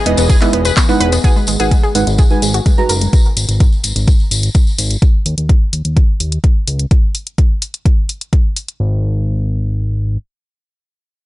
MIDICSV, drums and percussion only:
0, 0, Header, 1, 2, 480
1, 0, Start_track
1, 0, Key_signature, 5, "minor"
1, 0, Tempo, 472441
1, 1261, Time_signature, 4, 2, 24, 8
1, 11432, End_track
2, 0, Start_track
2, 0, Title_t, "Drums"
2, 61, Note_on_c, 9, 46, 101
2, 163, Note_off_c, 9, 46, 0
2, 176, Note_on_c, 9, 54, 70
2, 182, Note_on_c, 9, 42, 70
2, 278, Note_off_c, 9, 54, 0
2, 284, Note_off_c, 9, 42, 0
2, 298, Note_on_c, 9, 54, 61
2, 300, Note_on_c, 9, 36, 115
2, 301, Note_on_c, 9, 42, 53
2, 400, Note_off_c, 9, 54, 0
2, 402, Note_off_c, 9, 36, 0
2, 402, Note_off_c, 9, 42, 0
2, 420, Note_on_c, 9, 39, 38
2, 423, Note_on_c, 9, 46, 62
2, 423, Note_on_c, 9, 54, 37
2, 522, Note_off_c, 9, 39, 0
2, 525, Note_off_c, 9, 46, 0
2, 525, Note_off_c, 9, 54, 0
2, 541, Note_on_c, 9, 46, 102
2, 642, Note_off_c, 9, 46, 0
2, 658, Note_on_c, 9, 54, 74
2, 664, Note_on_c, 9, 42, 72
2, 759, Note_off_c, 9, 54, 0
2, 765, Note_off_c, 9, 42, 0
2, 778, Note_on_c, 9, 39, 121
2, 780, Note_on_c, 9, 36, 103
2, 781, Note_on_c, 9, 42, 57
2, 786, Note_on_c, 9, 54, 63
2, 880, Note_off_c, 9, 39, 0
2, 882, Note_off_c, 9, 36, 0
2, 883, Note_off_c, 9, 42, 0
2, 887, Note_off_c, 9, 54, 0
2, 904, Note_on_c, 9, 54, 38
2, 1006, Note_off_c, 9, 54, 0
2, 1021, Note_on_c, 9, 46, 100
2, 1123, Note_off_c, 9, 46, 0
2, 1139, Note_on_c, 9, 54, 74
2, 1143, Note_on_c, 9, 42, 68
2, 1241, Note_off_c, 9, 54, 0
2, 1245, Note_off_c, 9, 42, 0
2, 1261, Note_on_c, 9, 36, 119
2, 1262, Note_on_c, 9, 42, 52
2, 1262, Note_on_c, 9, 54, 51
2, 1362, Note_off_c, 9, 36, 0
2, 1363, Note_off_c, 9, 54, 0
2, 1364, Note_off_c, 9, 42, 0
2, 1384, Note_on_c, 9, 54, 25
2, 1486, Note_off_c, 9, 54, 0
2, 1492, Note_on_c, 9, 54, 90
2, 1502, Note_on_c, 9, 46, 104
2, 1594, Note_off_c, 9, 54, 0
2, 1603, Note_off_c, 9, 46, 0
2, 1621, Note_on_c, 9, 54, 41
2, 1624, Note_on_c, 9, 42, 66
2, 1722, Note_off_c, 9, 54, 0
2, 1725, Note_off_c, 9, 42, 0
2, 1741, Note_on_c, 9, 36, 102
2, 1742, Note_on_c, 9, 42, 56
2, 1742, Note_on_c, 9, 54, 45
2, 1842, Note_off_c, 9, 36, 0
2, 1843, Note_off_c, 9, 54, 0
2, 1844, Note_off_c, 9, 42, 0
2, 1864, Note_on_c, 9, 54, 24
2, 1965, Note_off_c, 9, 54, 0
2, 1981, Note_on_c, 9, 46, 101
2, 1982, Note_on_c, 9, 54, 80
2, 2083, Note_off_c, 9, 46, 0
2, 2084, Note_off_c, 9, 54, 0
2, 2104, Note_on_c, 9, 42, 65
2, 2105, Note_on_c, 9, 54, 36
2, 2206, Note_off_c, 9, 42, 0
2, 2207, Note_off_c, 9, 54, 0
2, 2217, Note_on_c, 9, 54, 52
2, 2221, Note_on_c, 9, 36, 115
2, 2221, Note_on_c, 9, 42, 51
2, 2319, Note_off_c, 9, 54, 0
2, 2323, Note_off_c, 9, 36, 0
2, 2323, Note_off_c, 9, 42, 0
2, 2338, Note_on_c, 9, 54, 25
2, 2439, Note_off_c, 9, 54, 0
2, 2461, Note_on_c, 9, 46, 97
2, 2468, Note_on_c, 9, 54, 83
2, 2563, Note_off_c, 9, 46, 0
2, 2570, Note_off_c, 9, 54, 0
2, 2582, Note_on_c, 9, 54, 42
2, 2583, Note_on_c, 9, 42, 67
2, 2683, Note_off_c, 9, 54, 0
2, 2685, Note_off_c, 9, 42, 0
2, 2701, Note_on_c, 9, 36, 100
2, 2701, Note_on_c, 9, 42, 55
2, 2706, Note_on_c, 9, 54, 50
2, 2803, Note_off_c, 9, 36, 0
2, 2803, Note_off_c, 9, 42, 0
2, 2808, Note_off_c, 9, 54, 0
2, 2823, Note_on_c, 9, 54, 25
2, 2925, Note_off_c, 9, 54, 0
2, 2937, Note_on_c, 9, 54, 89
2, 2941, Note_on_c, 9, 46, 94
2, 3038, Note_off_c, 9, 54, 0
2, 3043, Note_off_c, 9, 46, 0
2, 3062, Note_on_c, 9, 54, 39
2, 3063, Note_on_c, 9, 42, 65
2, 3164, Note_off_c, 9, 42, 0
2, 3164, Note_off_c, 9, 54, 0
2, 3181, Note_on_c, 9, 36, 121
2, 3181, Note_on_c, 9, 42, 50
2, 3183, Note_on_c, 9, 54, 54
2, 3282, Note_off_c, 9, 42, 0
2, 3283, Note_off_c, 9, 36, 0
2, 3285, Note_off_c, 9, 54, 0
2, 3307, Note_on_c, 9, 54, 28
2, 3409, Note_off_c, 9, 54, 0
2, 3421, Note_on_c, 9, 46, 104
2, 3421, Note_on_c, 9, 54, 91
2, 3523, Note_off_c, 9, 46, 0
2, 3523, Note_off_c, 9, 54, 0
2, 3542, Note_on_c, 9, 42, 66
2, 3542, Note_on_c, 9, 54, 37
2, 3643, Note_off_c, 9, 54, 0
2, 3644, Note_off_c, 9, 42, 0
2, 3661, Note_on_c, 9, 36, 102
2, 3661, Note_on_c, 9, 42, 51
2, 3665, Note_on_c, 9, 54, 47
2, 3763, Note_off_c, 9, 36, 0
2, 3763, Note_off_c, 9, 42, 0
2, 3766, Note_off_c, 9, 54, 0
2, 3783, Note_on_c, 9, 54, 25
2, 3885, Note_off_c, 9, 54, 0
2, 3897, Note_on_c, 9, 54, 79
2, 3901, Note_on_c, 9, 46, 108
2, 3998, Note_off_c, 9, 54, 0
2, 4003, Note_off_c, 9, 46, 0
2, 4023, Note_on_c, 9, 42, 63
2, 4025, Note_on_c, 9, 54, 36
2, 4125, Note_off_c, 9, 42, 0
2, 4127, Note_off_c, 9, 54, 0
2, 4139, Note_on_c, 9, 54, 50
2, 4141, Note_on_c, 9, 36, 115
2, 4142, Note_on_c, 9, 42, 49
2, 4241, Note_off_c, 9, 54, 0
2, 4243, Note_off_c, 9, 36, 0
2, 4243, Note_off_c, 9, 42, 0
2, 4266, Note_on_c, 9, 54, 23
2, 4367, Note_off_c, 9, 54, 0
2, 4382, Note_on_c, 9, 46, 103
2, 4385, Note_on_c, 9, 54, 90
2, 4483, Note_off_c, 9, 46, 0
2, 4487, Note_off_c, 9, 54, 0
2, 4501, Note_on_c, 9, 54, 39
2, 4504, Note_on_c, 9, 42, 62
2, 4602, Note_off_c, 9, 54, 0
2, 4605, Note_off_c, 9, 42, 0
2, 4617, Note_on_c, 9, 54, 45
2, 4621, Note_on_c, 9, 36, 102
2, 4622, Note_on_c, 9, 42, 51
2, 4718, Note_off_c, 9, 54, 0
2, 4723, Note_off_c, 9, 36, 0
2, 4723, Note_off_c, 9, 42, 0
2, 4743, Note_on_c, 9, 54, 26
2, 4845, Note_off_c, 9, 54, 0
2, 4860, Note_on_c, 9, 54, 98
2, 4862, Note_on_c, 9, 46, 96
2, 4961, Note_off_c, 9, 54, 0
2, 4963, Note_off_c, 9, 46, 0
2, 4984, Note_on_c, 9, 42, 61
2, 4984, Note_on_c, 9, 54, 40
2, 5085, Note_off_c, 9, 42, 0
2, 5086, Note_off_c, 9, 54, 0
2, 5101, Note_on_c, 9, 36, 124
2, 5102, Note_on_c, 9, 42, 47
2, 5203, Note_off_c, 9, 36, 0
2, 5204, Note_off_c, 9, 42, 0
2, 5342, Note_on_c, 9, 46, 100
2, 5444, Note_off_c, 9, 46, 0
2, 5464, Note_on_c, 9, 42, 63
2, 5565, Note_off_c, 9, 42, 0
2, 5581, Note_on_c, 9, 36, 108
2, 5582, Note_on_c, 9, 42, 47
2, 5683, Note_off_c, 9, 36, 0
2, 5684, Note_off_c, 9, 42, 0
2, 5821, Note_on_c, 9, 46, 100
2, 5923, Note_off_c, 9, 46, 0
2, 5943, Note_on_c, 9, 42, 59
2, 6045, Note_off_c, 9, 42, 0
2, 6061, Note_on_c, 9, 36, 110
2, 6062, Note_on_c, 9, 42, 48
2, 6162, Note_off_c, 9, 36, 0
2, 6163, Note_off_c, 9, 42, 0
2, 6301, Note_on_c, 9, 46, 103
2, 6403, Note_off_c, 9, 46, 0
2, 6423, Note_on_c, 9, 42, 58
2, 6525, Note_off_c, 9, 42, 0
2, 6541, Note_on_c, 9, 36, 103
2, 6542, Note_on_c, 9, 42, 47
2, 6642, Note_off_c, 9, 36, 0
2, 6643, Note_off_c, 9, 42, 0
2, 6782, Note_on_c, 9, 46, 94
2, 6883, Note_off_c, 9, 46, 0
2, 6903, Note_on_c, 9, 42, 58
2, 7005, Note_off_c, 9, 42, 0
2, 7021, Note_on_c, 9, 36, 119
2, 7021, Note_on_c, 9, 42, 46
2, 7122, Note_off_c, 9, 36, 0
2, 7123, Note_off_c, 9, 42, 0
2, 7261, Note_on_c, 9, 46, 97
2, 7363, Note_off_c, 9, 46, 0
2, 7383, Note_on_c, 9, 42, 57
2, 7485, Note_off_c, 9, 42, 0
2, 7501, Note_on_c, 9, 36, 102
2, 7501, Note_on_c, 9, 42, 47
2, 7602, Note_off_c, 9, 36, 0
2, 7603, Note_off_c, 9, 42, 0
2, 7742, Note_on_c, 9, 46, 104
2, 7843, Note_off_c, 9, 46, 0
2, 7864, Note_on_c, 9, 42, 57
2, 7966, Note_off_c, 9, 42, 0
2, 7981, Note_on_c, 9, 36, 111
2, 7982, Note_on_c, 9, 42, 43
2, 8082, Note_off_c, 9, 36, 0
2, 8084, Note_off_c, 9, 42, 0
2, 8221, Note_on_c, 9, 46, 99
2, 8323, Note_off_c, 9, 46, 0
2, 8345, Note_on_c, 9, 42, 55
2, 8446, Note_off_c, 9, 42, 0
2, 8461, Note_on_c, 9, 36, 101
2, 8462, Note_on_c, 9, 42, 47
2, 8562, Note_off_c, 9, 36, 0
2, 8563, Note_off_c, 9, 42, 0
2, 8702, Note_on_c, 9, 46, 95
2, 8803, Note_off_c, 9, 46, 0
2, 8824, Note_on_c, 9, 42, 56
2, 8925, Note_off_c, 9, 42, 0
2, 11432, End_track
0, 0, End_of_file